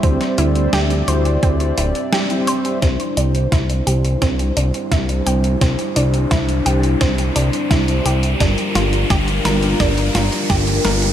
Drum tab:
HH |xxxxxxxxxxxxxxxx|xxxxxxxxxxxxxxxx|xxxxxxxxxxxxxxxx|xxxxxxxxxxxxxxxx|
SD |-o--o-------o---|o---o---o---o---|o---o---o---o---|o-o-o-o-o-o-o-o-|
BD |o-------o-------|o---o---o---o---|o---o---o---o---|o---o---o---o---|